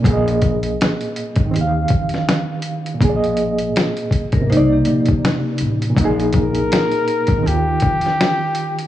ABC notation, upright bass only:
X:1
M:4/4
L:1/16
Q:"Swing 16ths" 1/4=81
K:Eb
V:1 name="Upright bass" clef=bass
B,,,4 z3 A,,, E,,2 F,,2 z4 | B,,,4 z3 A,,, C,,2 B,,,2 z2 =A,,,2 | B,,,4 z3 A,,, E,,2 F,,2 z4 |]